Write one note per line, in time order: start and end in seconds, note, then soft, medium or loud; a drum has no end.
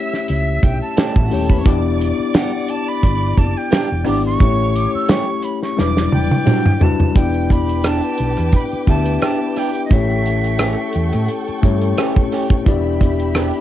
0.00 0.19 A3 medium
0.00 0.19 C#4 medium
0.00 0.20 E4 medium
0.00 0.20 G4 medium
0.00 0.21 C#5 medium
0.00 0.27 E5 medium
0.00 0.96 E5 loud
0.00 0.96 E6 loud
0.13 snare soft
0.28 0.58 C#2 medium
0.28 0.65 E5 medium
0.28 closed hi-hat medium
0.63 0.79 B1 medium
0.63 0.81 G5 medium
0.63 kick medium
0.63 closed hi-hat medium
0.82 1.81 A5 medium
0.97 1.13 A3 medium
0.97 1.13 C#4 medium
0.97 1.13 G4 medium
0.97 snare loud
0.97 closed hi-hat loud
1.06 1.16 D4 medium
1.06 1.16 D5 medium
1.16 1.29 A1 medium
1.16 1.24 E4 medium
1.16 1.24 E5 medium
1.16 kick medium
1.24 1.32 F#4 medium
1.24 1.32 F#5 medium
1.30 1.61 D#1 medium
1.30 1.63 A3 medium
1.30 1.64 C#4 medium
1.30 1.64 E4 medium
1.30 1.64 G4 medium
1.30 1.42 G4 medium
1.30 1.65 C#5 medium
1.30 1.41 G5 medium
1.30 open hi-hat medium
1.42 1.51 A4 medium
1.42 1.51 A5 medium
1.50 1.58 B4 medium
1.50 1.58 B5 medium
1.50 kick medium
1.59 1.66 C#5 medium
1.59 1.66 C#6 medium
1.64 2.10 E1 loud
1.64 2.93 B3 medium
1.64 2.94 D4 medium
1.64 2.94 E4 medium
1.64 2.95 G4 medium
1.64 4.03 D5 loud
1.64 2.95 D5 medium
1.64 4.03 D6 loud
1.64 kick loud
1.64 closed hi-hat medium
2.01 closed hi-hat medium
2.19 muted fingered electric bass stroke soft
2.34 2.50 B3 medium
2.34 2.50 D4 medium
2.34 2.51 G4 medium
2.34 2.72 F#5 medium
2.34 snare loud
2.34 closed hi-hat medium
2.68 2.90 A5 medium
2.68 closed hi-hat medium
2.88 3.40 B5 loud
3.03 3.32 G1 medium
3.03 kick medium
3.03 closed hi-hat medium
3.37 3.53 F#1 medium
3.37 3.59 A5 medium
3.37 kick medium
3.37 closed hi-hat medium
3.57 4.07 G5 medium
3.71 3.87 B3 medium
3.71 3.88 D4 medium
3.71 3.88 G4 medium
3.71 snare loud
3.71 closed hi-hat medium
3.92 4.04 E1 medium
4.05 4.36 G#1 medium
4.05 4.38 B3 medium
4.05 4.18 B3 medium
4.05 4.38 D4 medium
4.05 4.18 D4 medium
4.05 4.38 E4 medium
4.05 4.19 G4 medium
4.05 4.39 G4 medium
4.05 4.39 D5 medium
4.05 4.24 D6 medium
4.05 open hi-hat medium
4.26 4.77 C#6 loud
4.38 4.85 A1 loud
4.38 5.68 A3 medium
4.38 5.68 C#4 medium
4.38 5.69 E4 medium
4.38 5.69 G4 medium
4.38 5.42 C#5 loud
4.38 5.70 C#5 medium
4.38 5.42 C#6 loud
4.38 kick loud
4.38 closed hi-hat medium
4.76 4.94 D6 loud
4.76 closed hi-hat medium
4.95 5.12 E6 loud
4.95 muted fingered electric bass stroke soft
5.08 5.24 A3 medium
5.08 5.25 C#4 medium
5.08 5.25 G4 medium
5.08 5.46 C#6 loud
5.08 snare loud
5.08 closed hi-hat medium
5.43 5.63 B5 loud
5.43 closed hi-hat medium
5.63 5.81 C#6 medium
5.63 snare soft
5.77 6.07 E1 loud
5.77 6.75 F#3 medium
5.77 6.74 G3 medium
5.77 6.74 D4 medium
5.77 6.74 E4 medium
5.77 6.75 B4 medium
5.77 6.79 D5 medium
5.77 6.79 D6 loud
5.77 6.13 D6 medium
5.77 snare medium
5.97 snare medium
6.12 6.29 E1 medium
6.12 6.84 G5 loud
6.12 high tom medium
6.31 high tom medium
6.46 6.62 G3 medium
6.46 6.62 D4 medium
6.46 6.63 F#4 medium
6.46 mid tom medium
6.66 mid tom medium
6.80 7.13 G3 medium
6.80 7.13 D4 medium
6.80 7.13 E4 medium
6.80 7.14 F#4 medium
6.80 7.14 B4 medium
6.80 7.18 A5 medium
6.80 floor tom loud
7.00 floor tom medium
7.14 7.99 E1 medium
7.14 8.43 B3 medium
7.14 8.43 D4 medium
7.14 8.44 E4 medium
7.14 8.44 G4 medium
7.14 9.87 B4 medium
7.14 8.45 D5 medium
7.14 9.87 G5 medium
7.14 7.53 G5 medium
7.14 9.87 D6 medium
7.14 kick loud
7.14 closed hi-hat medium
7.34 closed hi-hat soft
7.50 7.88 B5 medium
7.50 kick medium
7.50 closed hi-hat medium
7.69 closed hi-hat soft
7.84 8.00 B3 medium
7.84 8.00 D4 medium
7.84 8.01 G4 medium
7.84 8.54 A5 medium
7.84 cross-stick loud
7.84 closed hi-hat medium
8.02 closed hi-hat soft
8.17 8.35 B1 medium
8.17 closed hi-hat medium
8.37 8.51 E2 medium
8.37 cross-stick soft
8.37 closed hi-hat soft
8.52 8.63 B5 medium
8.52 kick medium
8.52 closed hi-hat medium
8.72 muted fingered electric bass stroke soft
8.72 closed hi-hat soft
8.86 9.17 D2 medium
8.86 9.83 B3 medium
8.86 9.84 D4 medium
8.86 9.84 E4 medium
8.86 9.85 G4 medium
8.86 9.85 E5 medium
8.86 9.21 A5 medium
8.86 kick medium
8.86 closed hi-hat medium
9.06 closed hi-hat medium
9.22 9.38 B3 medium
9.22 9.38 D4 medium
9.22 9.38 G4 medium
9.22 9.60 A5 medium
9.22 cross-stick medium
9.22 closed hi-hat medium
9.56 9.69 B3 medium
9.56 9.69 D4 medium
9.56 9.69 G4 medium
9.56 9.85 G5 medium
9.56 cross-stick soft
9.56 open hi-hat medium
9.75 closed hi-hat medium
9.85 11.19 A3 medium
9.85 9.94 D#5 medium
9.90 10.74 A1 loud
9.90 11.19 C#4 medium
9.90 11.19 E4 medium
9.90 11.20 G4 medium
9.90 12.62 A4 medium
9.90 11.20 C#5 medium
9.90 11.29 E5 medium
9.90 12.62 G5 medium
9.90 12.62 C#6 medium
9.90 kick loud
9.90 closed hi-hat medium
10.26 closed hi-hat medium
10.44 closed hi-hat soft
10.59 10.75 A3 medium
10.59 10.76 C#4 medium
10.59 10.76 G4 medium
10.59 cross-stick loud
10.59 closed hi-hat medium
10.77 closed hi-hat soft
10.93 11.11 E2 medium
10.93 closed hi-hat medium
11.13 11.27 A2 medium
11.13 cross-stick soft
11.13 closed hi-hat soft
11.28 closed hi-hat medium
11.48 muted fingered electric bass stroke soft
11.48 closed hi-hat soft
11.62 11.92 G2 medium
11.62 12.59 A3 medium
11.62 12.59 C#4 medium
11.62 12.60 E4 medium
11.62 12.60 G4 medium
11.62 12.60 C#5 medium
11.62 kick medium
11.62 closed hi-hat medium
11.81 closed hi-hat soft
11.98 12.13 A3 medium
11.98 12.13 C#4 medium
11.98 12.14 G4 medium
11.98 cross-stick medium
11.98 closed hi-hat medium
12.16 kick medium
12.32 12.44 A3 soft
12.32 12.45 C#4 medium
12.32 12.45 G4 medium
12.32 cross-stick soft
12.32 open hi-hat medium
12.50 kick medium
12.50 closed hi-hat medium
12.65 13.50 E1 medium
12.65 13.61 B3 medium
12.65 13.61 D4 medium
12.65 13.61 E4 medium
12.65 13.61 G4 medium
12.65 13.61 D5 medium
12.65 13.61 E5 medium
12.65 13.61 B5 medium
12.65 kick loud
12.65 closed hi-hat medium
13.01 kick medium
13.01 closed hi-hat medium
13.20 closed hi-hat soft
13.34 13.51 B3 medium
13.34 13.51 D4 medium
13.34 13.51 G4 medium
13.34 cross-stick loud
13.34 closed hi-hat medium
13.53 closed hi-hat soft